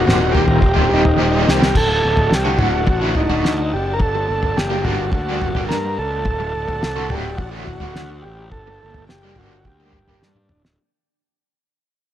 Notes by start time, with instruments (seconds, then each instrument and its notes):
Already playing: transistor combo organ F#4, string machine C5 D#5 A#5
0.04 picked electric bass D#1, overdriven electric guitar D#2 A#2 D#3 G3 C4 G4, mid tom
0.09 snare
0.32 overdriven electric guitar D#3 G3 C4 G4, transistor combo organ G4, floor tom
0.37 picked electric bass D#1
0.47 muted overdriven electric guitar stroke, floor tom
0.62 picked electric bass D#1, kick, floor tom
0.74 overdriven electric guitar D#3 G3 C4 G4, floor tom
0.88 overdriven electric guitar D#3 G3 C4 G4
0.92 picked electric bass D#1, transistor combo organ D#4
1.04 muted overdriven electric guitar stroke, floor tom
1.16 overdriven electric guitar D#2 A#2 D#3 G3 C4 G4
1.20 picked electric bass D#1
1.45 picked electric bass C2, overdriven electric guitar D#3 G3 C4 G4
1.49 transistor combo organ G4, snare
1.58 overdriven electric guitar D#3 G3 C4 G4
1.63 snare
1.75 picked electric bass D1, transistor combo organ A4, string machine D5 F#5 A5, kick, floor tom, crash
1.87 muted overdriven electric guitar stroke
2.04 picked electric bass D1
2.17 floor tom
2.30 picked electric bass C2, muted overdriven electric guitar stroke, snare
2.34 transistor combo organ G4
2.45 overdriven electric guitar A2 D3 A3 F#4
2.58 picked electric bass D1, overdriven electric guitar A2 D3 A3 F#4, transistor combo organ F#4, floor tom, mid tom
2.87 picked electric bass A1, transistor combo organ F#4, muted overdriven electric guitar stroke, kick, floor tom
3.01 overdriven electric guitar A2 D3 A3 F#4
3.15 picked electric bass D1, transistor combo organ D#4, floor tom
3.30 overdriven electric guitar A2 D3 A3 F#4, floor tom
3.45 picked electric bass D2, snare
3.58 muted overdriven electric guitar stroke
3.73 picked electric bass F#1, transistor combo organ G4
3.93 transistor combo organ A#4
4.00 picked electric bass G1, string machine A#3 D5, transistor combo organ A4, kick, floor tom
4.16 muted overdriven electric guitar stroke
4.29 picked electric bass G1
4.43 floor tom
4.57 picked electric bass F#1, transistor combo organ G4, muted overdriven electric guitar stroke, snare
4.70 overdriven electric guitar G3 A#3 D4 G4
4.84 picked electric bass G1, overdriven electric guitar G3 A#3 D4 G4, transistor combo organ F#4, floor tom, mid tom
5.12 picked electric bass D2, transistor combo organ F#4, muted overdriven electric guitar stroke, kick, floor tom
5.29 overdriven electric guitar G3 A#3 D4 G4
5.41 picked electric bass G1, floor tom
5.55 overdriven electric guitar G3 A#3 D4 G4, floor tom
5.68 picked electric bass G2, transistor combo organ A#4, snare
5.85 muted overdriven electric guitar stroke
5.99 picked electric bass C#2, transistor combo organ A4
6.25 picked electric bass D1, string machine D5 F#5, kick, floor tom
6.40 muted overdriven electric guitar stroke
6.55 picked electric bass D1
6.68 floor tom
6.83 picked electric bass C2, muted overdriven electric guitar stroke, snare
6.96 overdriven electric guitar A2 D3 A3 F#4
7.10 picked electric bass D1, overdriven electric guitar A2 D3 A3 F#4, transistor combo organ G4, floor tom, mid tom
7.37 picked electric bass A1, transistor combo organ F#4, muted overdriven electric guitar stroke, kick, floor tom
7.52 overdriven electric guitar A2 D3 A3 F#4
7.64 picked electric bass D1, transistor combo organ F#4, floor tom
7.80 overdriven electric guitar A2 D3 A3 F#4, floor tom
7.96 picked electric bass D2, snare
8.10 muted overdriven electric guitar stroke
8.22 picked electric bass A1, transistor combo organ G4
8.52 picked electric bass G1, string machine A#3 G5, transistor combo organ A4, kick, floor tom
8.68 muted overdriven electric guitar stroke
8.83 picked electric bass G1
8.94 floor tom
9.09 picked electric bass F#1, transistor combo organ G4, muted overdriven electric guitar stroke, snare
9.23 overdriven electric guitar G3 A#3 D4 G4
9.36 picked electric bass G1, overdriven electric guitar G3 A#3 D4 G4, transistor combo organ F#4, floor tom, mid tom
9.65 picked electric bass D2, transistor combo organ G4, muted overdriven electric guitar stroke, kick, floor tom
9.80 overdriven electric guitar G3 A#3 D4 G4
9.93 picked electric bass G1, floor tom
10.08 overdriven electric guitar G3 A#3 D4 G4, floor tom
10.22 picked electric bass G2, transistor combo organ D4, snare
10.35 muted overdriven electric guitar stroke, mid tom
10.49 picked electric bass D1, mid tom
10.65 snare